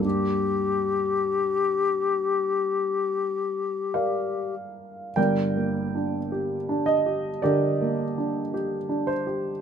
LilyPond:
<<
  \new Staff \with { instrumentName = "Flute" } { \time 4/4 \key g \minor \tempo 4 = 52 g'2.~ g'8 r8 | r1 | }
  \new Staff \with { instrumentName = "Grand piano" } { \time 4/4 \key g \minor << { r2. <bes' d'' f''>4 | <bes' d'' g''>4. ees''8 <g' bes' d''>4. c''8 | } \\ { <g, bes d' g'>1 | \tuplet 3/2 { <g,, g,>8 bes8 d'8 g'8 d'8 g'8 d8 bes8 d'8 g'8 d'8 g'8 } | } >> }
>>